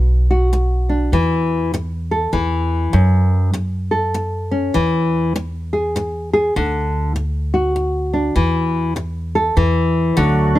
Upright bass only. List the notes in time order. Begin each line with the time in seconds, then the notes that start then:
Already playing: B1
1.12 E2
2.33 E2
2.93 F#2
4.76 E2
6.56 D2
8.36 E2
9.57 E2
10.17 D2